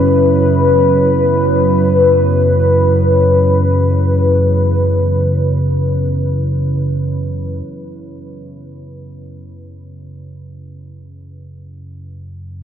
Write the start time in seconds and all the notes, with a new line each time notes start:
Already playing: F#2 C#3 F#3 E4 B4 C#5
7.67 F#2 C#3